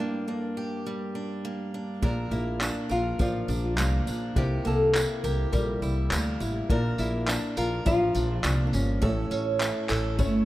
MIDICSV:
0, 0, Header, 1, 6, 480
1, 0, Start_track
1, 0, Tempo, 583090
1, 1672, Time_signature, 4, 2, 24, 8
1, 8602, End_track
2, 0, Start_track
2, 0, Title_t, "Felt piano"
2, 0, Program_c, 0, 0
2, 1661, Note_on_c, 0, 58, 69
2, 1667, Note_on_c, 0, 62, 53
2, 1670, Note_on_c, 0, 65, 60
2, 1677, Note_on_c, 0, 74, 75
2, 1835, Control_c, 0, 64, 127
2, 2394, Note_off_c, 0, 58, 0
2, 2397, Note_off_c, 0, 62, 0
2, 2399, Note_off_c, 0, 65, 0
2, 2402, Note_off_c, 0, 74, 0
2, 2622, Note_on_c, 0, 58, 68
2, 2629, Note_on_c, 0, 62, 64
2, 2633, Note_on_c, 0, 65, 57
2, 2636, Note_on_c, 0, 74, 81
2, 3355, Note_off_c, 0, 58, 0
2, 3358, Note_off_c, 0, 62, 0
2, 3360, Note_off_c, 0, 65, 0
2, 3362, Note_off_c, 0, 74, 0
2, 3585, Note_on_c, 0, 58, 66
2, 3588, Note_on_c, 0, 64, 59
2, 3595, Note_on_c, 0, 67, 64
2, 3600, Note_on_c, 0, 72, 79
2, 3602, Control_c, 0, 64, 0
2, 3751, Control_c, 0, 64, 127
2, 4316, Note_off_c, 0, 58, 0
2, 4317, Note_off_c, 0, 64, 0
2, 4321, Note_off_c, 0, 67, 0
2, 4324, Note_off_c, 0, 72, 0
2, 4541, Note_on_c, 0, 58, 70
2, 4546, Note_on_c, 0, 64, 65
2, 4552, Note_on_c, 0, 67, 58
2, 4557, Note_on_c, 0, 74, 77
2, 5274, Note_off_c, 0, 58, 0
2, 5276, Note_off_c, 0, 64, 0
2, 5279, Note_off_c, 0, 67, 0
2, 5282, Note_off_c, 0, 74, 0
2, 5504, Note_on_c, 0, 58, 70
2, 5511, Note_on_c, 0, 62, 60
2, 5516, Note_on_c, 0, 65, 61
2, 5522, Control_c, 0, 64, 0
2, 5522, Note_on_c, 0, 74, 77
2, 5641, Control_c, 0, 64, 127
2, 6235, Note_off_c, 0, 58, 0
2, 6238, Note_off_c, 0, 62, 0
2, 6241, Note_off_c, 0, 65, 0
2, 6244, Note_off_c, 0, 74, 0
2, 6461, Note_on_c, 0, 58, 68
2, 6465, Note_on_c, 0, 62, 64
2, 6470, Note_on_c, 0, 65, 63
2, 6477, Note_on_c, 0, 74, 76
2, 7193, Note_off_c, 0, 58, 0
2, 7195, Note_off_c, 0, 62, 0
2, 7197, Note_off_c, 0, 65, 0
2, 7201, Note_off_c, 0, 74, 0
2, 7423, Note_on_c, 0, 57, 67
2, 7429, Note_on_c, 0, 61, 58
2, 7434, Note_on_c, 0, 64, 65
2, 7439, Note_on_c, 0, 73, 80
2, 7442, Control_c, 0, 64, 0
2, 7571, Control_c, 0, 64, 127
2, 8153, Note_off_c, 0, 57, 0
2, 8156, Note_off_c, 0, 61, 0
2, 8159, Note_off_c, 0, 64, 0
2, 8161, Note_off_c, 0, 73, 0
2, 8378, Note_on_c, 0, 57, 78
2, 8383, Note_on_c, 0, 61, 70
2, 8389, Note_on_c, 0, 64, 77
2, 8395, Note_on_c, 0, 73, 89
2, 8602, Note_off_c, 0, 57, 0
2, 8602, Note_off_c, 0, 61, 0
2, 8602, Note_off_c, 0, 64, 0
2, 8602, Note_off_c, 0, 73, 0
2, 8602, End_track
3, 0, Start_track
3, 0, Title_t, "Nylon-string guitar"
3, 0, Program_c, 1, 24
3, 0, Note_on_c, 1, 62, 83
3, 209, Note_off_c, 1, 62, 0
3, 227, Note_on_c, 1, 58, 72
3, 1397, Note_off_c, 1, 58, 0
3, 1673, Note_on_c, 1, 62, 77
3, 1904, Note_on_c, 1, 64, 76
3, 1920, Note_off_c, 1, 62, 0
3, 2151, Note_on_c, 1, 62, 85
3, 2155, Note_off_c, 1, 64, 0
3, 2398, Note_on_c, 1, 65, 93
3, 2399, Note_off_c, 1, 62, 0
3, 2618, Note_off_c, 1, 65, 0
3, 2644, Note_on_c, 1, 65, 91
3, 2861, Note_off_c, 1, 65, 0
3, 3604, Note_on_c, 1, 67, 79
3, 3839, Note_off_c, 1, 67, 0
3, 3843, Note_on_c, 1, 69, 91
3, 4077, Note_off_c, 1, 69, 0
3, 4080, Note_on_c, 1, 67, 83
3, 4309, Note_off_c, 1, 67, 0
3, 4312, Note_on_c, 1, 70, 96
3, 4538, Note_off_c, 1, 70, 0
3, 4548, Note_on_c, 1, 70, 83
3, 4773, Note_off_c, 1, 70, 0
3, 5521, Note_on_c, 1, 62, 99
3, 5740, Note_off_c, 1, 62, 0
3, 5756, Note_on_c, 1, 64, 89
3, 5993, Note_on_c, 1, 62, 96
3, 6001, Note_off_c, 1, 64, 0
3, 6215, Note_off_c, 1, 62, 0
3, 6234, Note_on_c, 1, 65, 101
3, 6465, Note_off_c, 1, 65, 0
3, 6475, Note_on_c, 1, 65, 101
3, 6920, Note_off_c, 1, 65, 0
3, 6955, Note_on_c, 1, 62, 82
3, 7128, Note_off_c, 1, 62, 0
3, 7138, Note_on_c, 1, 62, 65
3, 7190, Note_off_c, 1, 62, 0
3, 7196, Note_on_c, 1, 61, 84
3, 8602, Note_off_c, 1, 61, 0
3, 8602, End_track
4, 0, Start_track
4, 0, Title_t, "Steel-string acoustic guitar"
4, 0, Program_c, 2, 25
4, 0, Note_on_c, 2, 43, 69
4, 0, Note_on_c, 2, 58, 58
4, 0, Note_on_c, 2, 62, 56
4, 0, Note_on_c, 2, 67, 62
4, 227, Note_off_c, 2, 62, 0
4, 230, Note_on_c, 2, 62, 54
4, 460, Note_off_c, 2, 67, 0
4, 470, Note_on_c, 2, 67, 68
4, 712, Note_on_c, 2, 55, 66
4, 944, Note_off_c, 2, 62, 0
4, 947, Note_on_c, 2, 62, 56
4, 1188, Note_off_c, 2, 58, 0
4, 1192, Note_on_c, 2, 58, 62
4, 1430, Note_off_c, 2, 62, 0
4, 1434, Note_on_c, 2, 62, 53
4, 1663, Note_off_c, 2, 43, 0
4, 1667, Note_on_c, 2, 46, 73
4, 1670, Note_off_c, 2, 67, 0
4, 1674, Note_on_c, 2, 70, 52
4, 1725, Note_off_c, 2, 55, 0
4, 1903, Note_off_c, 2, 58, 0
4, 1907, Note_on_c, 2, 58, 55
4, 2139, Note_off_c, 2, 62, 0
4, 2142, Note_on_c, 2, 62, 55
4, 2379, Note_off_c, 2, 70, 0
4, 2383, Note_on_c, 2, 70, 59
4, 2628, Note_on_c, 2, 53, 60
4, 2857, Note_off_c, 2, 62, 0
4, 2867, Note_on_c, 2, 62, 56
4, 3114, Note_off_c, 2, 58, 0
4, 3117, Note_on_c, 2, 58, 53
4, 3341, Note_off_c, 2, 62, 0
4, 3351, Note_on_c, 2, 62, 59
4, 3591, Note_off_c, 2, 46, 0
4, 3593, Note_on_c, 2, 48, 79
4, 3599, Note_off_c, 2, 70, 0
4, 3602, Note_on_c, 2, 67, 54
4, 3643, Note_off_c, 2, 53, 0
4, 3644, Note_off_c, 2, 62, 0
4, 3823, Note_off_c, 2, 58, 0
4, 3826, Note_on_c, 2, 58, 59
4, 4075, Note_on_c, 2, 64, 58
4, 4304, Note_off_c, 2, 67, 0
4, 4314, Note_on_c, 2, 67, 66
4, 4551, Note_on_c, 2, 55, 63
4, 4783, Note_off_c, 2, 64, 0
4, 4793, Note_on_c, 2, 64, 56
4, 5034, Note_off_c, 2, 58, 0
4, 5037, Note_on_c, 2, 58, 62
4, 5261, Note_off_c, 2, 64, 0
4, 5271, Note_on_c, 2, 64, 57
4, 5513, Note_off_c, 2, 48, 0
4, 5513, Note_off_c, 2, 67, 0
4, 5517, Note_on_c, 2, 46, 80
4, 5523, Note_on_c, 2, 70, 60
4, 5564, Note_off_c, 2, 55, 0
4, 5564, Note_off_c, 2, 64, 0
4, 5749, Note_off_c, 2, 58, 0
4, 5752, Note_on_c, 2, 58, 53
4, 5989, Note_on_c, 2, 62, 53
4, 6223, Note_off_c, 2, 70, 0
4, 6233, Note_on_c, 2, 70, 68
4, 6469, Note_on_c, 2, 53, 67
4, 6696, Note_off_c, 2, 62, 0
4, 6706, Note_on_c, 2, 62, 60
4, 6939, Note_off_c, 2, 58, 0
4, 6949, Note_on_c, 2, 58, 60
4, 7188, Note_off_c, 2, 62, 0
4, 7419, Note_off_c, 2, 46, 0
4, 7422, Note_on_c, 2, 45, 80
4, 7424, Note_off_c, 2, 70, 0
4, 7427, Note_on_c, 2, 69, 61
4, 7482, Note_off_c, 2, 53, 0
4, 7482, Note_off_c, 2, 58, 0
4, 7664, Note_on_c, 2, 61, 53
4, 7904, Note_on_c, 2, 64, 53
4, 8134, Note_off_c, 2, 69, 0
4, 8144, Note_on_c, 2, 69, 69
4, 8385, Note_on_c, 2, 57, 68
4, 8602, Note_off_c, 2, 45, 0
4, 8602, Note_off_c, 2, 57, 0
4, 8602, Note_off_c, 2, 61, 0
4, 8602, Note_off_c, 2, 64, 0
4, 8602, Note_off_c, 2, 69, 0
4, 8602, End_track
5, 0, Start_track
5, 0, Title_t, "Upright bass"
5, 0, Program_c, 3, 32
5, 1666, Note_on_c, 3, 34, 97
5, 1865, Note_off_c, 3, 34, 0
5, 1903, Note_on_c, 3, 34, 93
5, 2212, Note_off_c, 3, 34, 0
5, 2388, Note_on_c, 3, 34, 78
5, 2587, Note_off_c, 3, 34, 0
5, 2633, Note_on_c, 3, 33, 79
5, 2829, Note_off_c, 3, 33, 0
5, 2869, Note_on_c, 3, 34, 93
5, 3104, Note_off_c, 3, 34, 0
5, 3104, Note_on_c, 3, 36, 103
5, 3304, Note_off_c, 3, 36, 0
5, 3352, Note_on_c, 3, 34, 80
5, 3549, Note_off_c, 3, 34, 0
5, 3589, Note_on_c, 3, 36, 89
5, 3787, Note_off_c, 3, 36, 0
5, 3835, Note_on_c, 3, 36, 84
5, 4139, Note_off_c, 3, 36, 0
5, 4312, Note_on_c, 3, 36, 93
5, 4509, Note_off_c, 3, 36, 0
5, 4553, Note_on_c, 3, 34, 92
5, 4749, Note_off_c, 3, 34, 0
5, 4791, Note_on_c, 3, 36, 85
5, 4988, Note_off_c, 3, 36, 0
5, 5034, Note_on_c, 3, 38, 92
5, 5230, Note_off_c, 3, 38, 0
5, 5272, Note_on_c, 3, 33, 93
5, 5469, Note_off_c, 3, 33, 0
5, 5513, Note_on_c, 3, 34, 84
5, 5709, Note_off_c, 3, 34, 0
5, 5751, Note_on_c, 3, 34, 95
5, 6056, Note_off_c, 3, 34, 0
5, 6231, Note_on_c, 3, 34, 88
5, 6428, Note_off_c, 3, 34, 0
5, 6474, Note_on_c, 3, 33, 89
5, 6669, Note_off_c, 3, 33, 0
5, 6711, Note_on_c, 3, 34, 95
5, 6907, Note_off_c, 3, 34, 0
5, 6949, Note_on_c, 3, 36, 92
5, 7146, Note_off_c, 3, 36, 0
5, 7185, Note_on_c, 3, 31, 93
5, 7384, Note_off_c, 3, 31, 0
5, 7427, Note_on_c, 3, 33, 94
5, 7625, Note_off_c, 3, 33, 0
5, 7668, Note_on_c, 3, 33, 85
5, 7973, Note_off_c, 3, 33, 0
5, 8145, Note_on_c, 3, 33, 90
5, 8387, Note_off_c, 3, 33, 0
5, 8387, Note_on_c, 3, 31, 98
5, 8584, Note_off_c, 3, 31, 0
5, 8602, End_track
6, 0, Start_track
6, 0, Title_t, "Drums"
6, 1668, Note_on_c, 9, 36, 100
6, 1670, Note_on_c, 9, 54, 26
6, 1750, Note_off_c, 9, 36, 0
6, 1753, Note_off_c, 9, 54, 0
6, 1918, Note_on_c, 9, 54, 29
6, 2001, Note_off_c, 9, 54, 0
6, 2148, Note_on_c, 9, 39, 102
6, 2159, Note_on_c, 9, 54, 84
6, 2230, Note_off_c, 9, 39, 0
6, 2241, Note_off_c, 9, 54, 0
6, 2394, Note_on_c, 9, 54, 41
6, 2476, Note_off_c, 9, 54, 0
6, 2632, Note_on_c, 9, 54, 38
6, 2633, Note_on_c, 9, 36, 101
6, 2715, Note_off_c, 9, 36, 0
6, 2715, Note_off_c, 9, 54, 0
6, 2879, Note_on_c, 9, 54, 43
6, 2961, Note_off_c, 9, 54, 0
6, 3111, Note_on_c, 9, 39, 114
6, 3113, Note_on_c, 9, 54, 76
6, 3194, Note_off_c, 9, 39, 0
6, 3195, Note_off_c, 9, 54, 0
6, 3354, Note_on_c, 9, 54, 48
6, 3437, Note_off_c, 9, 54, 0
6, 3591, Note_on_c, 9, 36, 105
6, 3601, Note_on_c, 9, 54, 24
6, 3674, Note_off_c, 9, 36, 0
6, 3683, Note_off_c, 9, 54, 0
6, 3847, Note_on_c, 9, 54, 30
6, 3929, Note_off_c, 9, 54, 0
6, 4071, Note_on_c, 9, 39, 102
6, 4084, Note_on_c, 9, 54, 71
6, 4153, Note_off_c, 9, 39, 0
6, 4166, Note_off_c, 9, 54, 0
6, 4316, Note_on_c, 9, 54, 41
6, 4399, Note_off_c, 9, 54, 0
6, 4555, Note_on_c, 9, 36, 88
6, 4558, Note_on_c, 9, 54, 42
6, 4637, Note_off_c, 9, 36, 0
6, 4640, Note_off_c, 9, 54, 0
6, 4801, Note_on_c, 9, 54, 42
6, 4884, Note_off_c, 9, 54, 0
6, 5031, Note_on_c, 9, 39, 112
6, 5039, Note_on_c, 9, 54, 78
6, 5113, Note_off_c, 9, 39, 0
6, 5121, Note_off_c, 9, 54, 0
6, 5279, Note_on_c, 9, 54, 49
6, 5362, Note_off_c, 9, 54, 0
6, 5512, Note_on_c, 9, 36, 106
6, 5595, Note_off_c, 9, 36, 0
6, 5748, Note_on_c, 9, 54, 56
6, 5762, Note_off_c, 9, 54, 0
6, 5762, Note_on_c, 9, 54, 32
6, 5844, Note_off_c, 9, 54, 0
6, 5990, Note_on_c, 9, 39, 106
6, 6004, Note_on_c, 9, 54, 87
6, 6072, Note_off_c, 9, 39, 0
6, 6086, Note_off_c, 9, 54, 0
6, 6231, Note_on_c, 9, 54, 66
6, 6234, Note_off_c, 9, 54, 0
6, 6234, Note_on_c, 9, 54, 46
6, 6316, Note_off_c, 9, 54, 0
6, 6470, Note_on_c, 9, 54, 44
6, 6474, Note_on_c, 9, 36, 99
6, 6552, Note_off_c, 9, 54, 0
6, 6557, Note_off_c, 9, 36, 0
6, 6712, Note_on_c, 9, 54, 56
6, 6714, Note_off_c, 9, 54, 0
6, 6714, Note_on_c, 9, 54, 42
6, 6797, Note_off_c, 9, 54, 0
6, 6949, Note_on_c, 9, 54, 79
6, 6950, Note_on_c, 9, 39, 122
6, 7031, Note_off_c, 9, 54, 0
6, 7032, Note_off_c, 9, 39, 0
6, 7188, Note_on_c, 9, 54, 64
6, 7193, Note_off_c, 9, 54, 0
6, 7193, Note_on_c, 9, 54, 53
6, 7275, Note_off_c, 9, 54, 0
6, 7429, Note_on_c, 9, 36, 99
6, 7430, Note_on_c, 9, 54, 27
6, 7512, Note_off_c, 9, 36, 0
6, 7513, Note_off_c, 9, 54, 0
6, 7669, Note_on_c, 9, 54, 65
6, 7751, Note_off_c, 9, 54, 0
6, 7907, Note_on_c, 9, 39, 110
6, 7915, Note_on_c, 9, 54, 75
6, 7990, Note_off_c, 9, 39, 0
6, 7998, Note_off_c, 9, 54, 0
6, 8145, Note_on_c, 9, 39, 83
6, 8146, Note_on_c, 9, 54, 62
6, 8147, Note_off_c, 9, 54, 0
6, 8147, Note_on_c, 9, 54, 44
6, 8227, Note_off_c, 9, 39, 0
6, 8229, Note_off_c, 9, 54, 0
6, 8385, Note_on_c, 9, 54, 43
6, 8389, Note_on_c, 9, 36, 98
6, 8468, Note_off_c, 9, 54, 0
6, 8471, Note_off_c, 9, 36, 0
6, 8602, End_track
0, 0, End_of_file